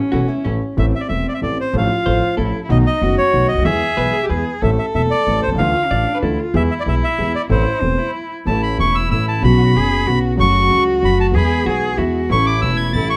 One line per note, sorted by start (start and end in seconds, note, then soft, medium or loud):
0.00 0.45 C#4 medium
0.12 0.26 E1 medium
0.12 0.26 E2 soft
0.12 0.26 E3 soft
0.12 0.25 A3 soft
0.12 0.26 A3 soft
0.12 0.26 C#4 soft
0.12 0.26 E4 medium
0.12 0.28 F#4 medium
0.12 0.26 A4 soft
0.28 0.45 E4 medium
0.44 0.58 A1 medium
0.44 0.58 A2 medium
0.44 0.58 E3 soft
0.44 0.58 A3 soft
0.44 0.75 C#4 medium
0.44 0.58 C#4 soft
0.44 0.59 E4 soft
0.44 0.59 A4 soft
0.77 0.91 A1 medium
0.77 0.91 A2 medium
0.77 0.91 E3 medium
0.77 0.91 A3 medium
0.77 1.76 C4 medium
0.77 0.91 C4 soft
0.77 0.91 A4 medium
0.77 0.86 E5 medium
0.95 1.01 E5 medium
1.00 1.07 D5 medium
1.09 1.23 E1 soft
1.09 1.23 E2 soft
1.09 1.23 E3 soft
1.09 1.23 A3 soft
1.09 1.23 C4 soft
1.09 1.23 A4 soft
1.09 1.27 E5 medium
1.28 1.33 D5 medium
1.34 1.40 E5 medium
1.41 1.55 A1 soft
1.41 1.55 A2 soft
1.41 1.55 E3 soft
1.41 1.55 A3 soft
1.41 1.55 C4 soft
1.41 1.55 A4 soft
1.41 1.58 D5 medium
1.61 1.75 C5 medium
1.73 1.87 A1 medium
1.73 1.87 A2 medium
1.73 1.87 F3 medium
1.73 1.87 A3 medium
1.73 1.87 C4 medium
1.73 2.39 F4 medium
1.73 1.87 A4 medium
1.73 2.35 F5 medium
2.06 2.19 A1 soft
2.06 2.19 A1 medium
2.06 2.19 A2 soft
2.06 2.19 F3 soft
2.06 2.19 A3 soft
2.06 2.19 C4 soft
2.06 2.19 A4 soft
2.06 2.37 C5 medium
2.37 2.51 A1 soft
2.37 2.51 A2 soft
2.37 2.50 F3 soft
2.37 2.50 A3 soft
2.37 2.51 C4 soft
2.37 2.62 E4 medium
2.37 2.59 A4 medium
2.37 2.51 A4 soft
2.64 2.72 E4 medium
2.69 2.83 B1 medium
2.69 2.83 B2 medium
2.69 2.82 D#3 medium
2.69 2.83 A3 medium
2.69 2.83 B3 medium
2.69 3.04 D#4 medium
2.69 2.83 F#4 medium
2.69 2.78 D#5 medium
2.86 3.16 D#5 medium
3.01 3.15 F#1 medium
3.01 3.15 F#2 medium
3.01 3.15 D#3 soft
3.01 3.15 A3 soft
3.01 3.15 B3 soft
3.01 3.15 F#4 soft
3.01 3.67 F#4 medium
3.18 3.47 C#5 medium
3.33 3.47 B1 soft
3.33 3.47 B1 medium
3.33 3.47 B2 soft
3.33 3.47 D#3 soft
3.33 3.47 A3 soft
3.33 3.47 B3 soft
3.33 3.47 F#4 soft
3.48 3.63 D#5 medium
3.53 3.57 C#2 soft
3.53 3.61 D2 soft
3.58 3.60 D2 soft
3.58 3.65 D#2 medium
3.62 3.65 D#2 medium
3.62 3.79 E2 medium
3.62 3.79 E3 medium
3.62 3.79 G#3 medium
3.62 3.79 B3 medium
3.62 3.79 G#4 medium
3.62 4.25 E5 medium
3.66 4.23 G#4 medium
3.97 4.11 B1 soft
3.97 4.11 B1 medium
3.97 4.11 B2 soft
3.97 4.11 E3 soft
3.97 4.11 G#3 soft
3.97 4.11 B3 soft
3.97 4.11 G#4 soft
3.97 4.14 B4 medium
4.13 4.30 G#4 medium
4.23 4.31 G4 medium
4.29 4.43 E2 soft
4.29 4.44 E2 soft
4.29 4.43 E3 soft
4.29 4.43 G#3 soft
4.29 4.43 B3 soft
4.29 4.43 G#4 soft
4.29 4.63 G#4 medium
4.29 4.52 B4 medium
4.62 4.76 A1 medium
4.62 4.76 A2 medium
4.62 4.76 E3 medium
4.62 4.76 A3 medium
4.62 4.76 C4 medium
4.62 5.62 A4 medium
4.62 4.76 A4 medium
4.62 4.71 E5 medium
4.79 4.86 E5 medium
4.94 5.08 E1 medium
4.94 5.09 E1 soft
4.94 5.08 E2 soft
4.94 5.08 E3 soft
4.94 5.08 A3 soft
4.94 5.08 C4 soft
4.94 5.09 A4 soft
4.94 5.02 E5 medium
5.11 5.41 D5 medium
5.27 5.40 A1 soft
5.27 5.41 A1 soft
5.27 5.41 A2 soft
5.27 5.40 E3 soft
5.27 5.41 A3 soft
5.27 5.41 C4 soft
5.27 5.41 A4 soft
5.42 5.50 C5 medium
5.47 5.50 B1 soft
5.47 5.51 B1 soft
5.47 5.54 C2 soft
5.51 5.55 C2 soft
5.51 5.58 C#2 medium
5.51 5.59 C#2 medium
5.58 5.72 D2 medium
5.58 5.73 D2 medium
5.58 5.73 D3 medium
5.58 5.72 E3 medium
5.58 5.73 A3 medium
5.58 5.73 D4 medium
5.58 5.73 F4 medium
5.58 5.87 F4 medium
5.58 6.18 F5 medium
5.85 5.94 C#4 soft
5.91 6.04 A1 medium
5.91 6.05 A1 soft
5.91 6.05 A2 soft
5.91 6.04 E3 soft
5.91 6.05 A3 soft
5.91 6.05 D4 soft
5.91 6.25 D4 medium
5.91 6.05 F4 soft
5.91 6.14 D5 medium
6.15 6.22 B4 medium
6.22 6.36 D2 medium
6.22 6.36 D3 soft
6.22 6.36 E3 soft
6.22 6.36 A3 soft
6.22 6.36 D4 soft
6.22 6.42 E4 medium
6.22 6.36 F4 soft
6.22 6.45 A4 medium
6.40 6.58 F4 medium
6.54 6.67 E2 medium
6.54 6.68 E2 medium
6.54 6.68 E3 medium
6.54 6.68 G#3 medium
6.54 6.68 B3 medium
6.54 7.50 E4 medium
6.54 6.68 G#4 medium
6.54 6.63 E5 medium
6.71 6.74 E5 medium
6.80 6.83 D5 medium
6.86 6.99 B1 medium
6.86 7.00 B1 soft
6.86 7.00 B2 soft
6.86 6.99 E3 soft
6.86 7.00 G#3 soft
6.86 7.00 B3 soft
6.86 7.00 G#4 soft
6.86 6.95 E5 medium
7.04 7.33 E5 medium
7.18 7.31 E2 soft
7.18 7.32 E2 soft
7.18 7.32 E3 soft
7.18 7.32 G#3 soft
7.18 7.31 B3 soft
7.18 7.32 G#4 soft
7.35 7.42 D5 medium
7.49 7.63 A1 medium
7.49 7.63 A2 medium
7.49 7.63 E3 medium
7.49 7.63 A3 medium
7.49 7.63 C4 medium
7.49 7.83 E4 medium
7.49 7.63 A4 medium
7.49 8.11 C5 medium
7.82 7.95 E1 soft
7.82 7.95 E2 soft
7.82 7.95 E3 soft
7.82 7.95 A3 soft
7.82 8.00 C4 medium
7.82 7.96 C4 soft
7.82 7.96 A4 soft
7.98 8.31 E4 medium
8.45 8.77 A1 medium
8.45 8.77 A2 medium
8.45 8.75 E3 soft
8.45 8.77 A3 soft
8.45 8.77 A3 medium
8.45 8.77 C#4 medium
8.45 8.78 C#4 soft
8.45 9.45 E4 medium
8.45 8.78 E4 medium
8.45 8.78 A4 medium
8.45 8.62 A5 medium
8.63 8.78 B5 medium
8.77 9.09 E1 soft
8.77 9.09 E2 soft
8.77 9.07 E3 soft
8.77 9.09 A3 soft
8.77 9.10 A3 soft
8.77 9.10 C#4 soft
8.77 9.10 E4 soft
8.77 8.96 C#6 medium
8.95 9.09 E6 medium
9.08 9.41 A1 soft
9.08 9.42 A1 soft
9.08 9.41 A2 soft
9.08 9.40 E3 soft
9.08 9.41 A3 soft
9.08 9.42 A3 soft
9.08 9.42 C#4 soft
9.08 9.42 E4 soft
9.08 9.26 E6 medium
9.12 9.42 A4 soft
9.28 9.42 A5 medium
9.41 9.73 B1 medium
9.41 9.73 B2 medium
9.41 9.72 C#3 medium
9.41 9.73 F#3 soft
9.41 9.73 B3 medium
9.41 9.74 B3 soft
9.41 9.73 C#4 medium
9.41 9.74 F#4 medium
9.41 9.78 F#4 medium
9.41 9.74 F#4 medium
9.41 10.19 B5 loud
9.73 10.05 F#1 soft
9.73 10.05 F#1 medium
9.73 10.05 F#2 soft
9.73 10.03 C#3 soft
9.73 10.04 F#3 soft
9.73 10.06 B3 soft
9.73 10.06 C#4 soft
9.73 10.06 F#4 soft
9.73 10.08 G#4 medium
10.04 10.37 B1 soft
10.04 10.37 B2 soft
10.04 10.35 C#3 soft
10.04 10.36 F#3 soft
10.04 10.37 B3 soft
10.04 10.37 C#4 soft
10.04 10.38 F#4 medium
10.04 10.38 F#4 soft
10.08 10.38 F#4 soft
10.36 10.69 F#1 medium
10.36 10.68 F#2 medium
10.36 10.67 C#3 medium
10.36 10.68 F#3 medium
10.36 10.69 A3 medium
10.36 10.69 C#4 medium
10.36 11.36 F#4 medium
10.36 10.69 F#4 medium
10.40 10.70 F#4 medium
10.40 10.84 C#6 medium
10.68 11.01 C#2 soft
10.68 10.99 C#3 soft
10.68 11.00 F#3 soft
10.68 11.01 A3 soft
10.68 11.01 C#4 soft
10.68 11.01 F#4 soft
11.00 11.33 F#1 soft
11.00 11.33 F#2 soft
11.00 11.31 C#3 soft
11.00 11.32 F#3 soft
11.00 11.32 A3 soft
11.00 11.33 A3 soft
11.00 11.32 C#4 soft
11.00 11.33 F#4 soft
11.05 11.34 F#4 soft
11.05 11.18 B5 medium
11.20 11.27 A5 medium
11.32 11.64 E2 medium
11.32 11.63 E3 medium
11.32 11.64 G#3 soft
11.32 11.64 B3 medium
11.32 11.65 B3 soft
11.32 11.64 E4 medium
11.32 11.66 G#4 medium
11.32 11.65 G#4 medium
11.36 11.65 G#4 medium
11.36 11.65 B5 medium
11.65 11.96 B1 soft
11.65 11.97 B1 soft
11.65 11.97 B2 soft
11.65 11.95 E3 soft
11.65 11.97 G#3 soft
11.65 11.96 B3 soft
11.65 11.97 B3 soft
11.65 11.97 E4 soft
11.65 11.99 F#4 medium
11.65 11.97 G#4 soft
11.65 11.99 G#4 medium
11.65 11.98 G#4 soft
11.97 12.29 E2 soft
11.97 12.28 E3 soft
11.97 12.29 G#3 soft
11.97 12.29 B3 soft
11.97 12.20 E4 medium
11.97 12.29 E4 soft
11.97 12.31 F#4 medium
11.97 12.29 G#4 soft
11.97 12.30 G#4 soft
12.29 12.61 A1 medium
12.29 12.61 A2 medium
12.29 12.60 E3 medium
12.29 12.61 A3 soft
12.29 12.60 C#4 medium
12.29 12.61 C#4 soft
12.29 12.94 E4 medium
12.29 12.61 E4 soft
12.29 12.61 A4 medium
12.29 12.46 C#6 medium
12.33 12.62 A4 medium
12.46 12.61 D6 medium
12.61 12.93 E1 soft
12.61 12.93 E2 soft
12.61 12.91 E3 soft
12.61 12.92 A3 soft
12.61 12.93 C#4 soft
12.61 12.94 C#4 soft
12.61 12.93 E4 soft
12.61 12.93 A4 soft
12.61 12.94 A4 soft
12.61 12.77 E6 medium
12.77 12.92 G#6 medium
12.93 13.17 A1 soft
12.93 13.17 A2 soft
12.93 13.17 E3 soft
12.93 13.17 A3 soft
12.93 13.17 C#4 soft
12.93 13.17 E4 soft
12.93 13.17 E4 medium
12.93 13.17 A4 soft
12.93 13.08 A6 medium
13.10 13.17 C#6 medium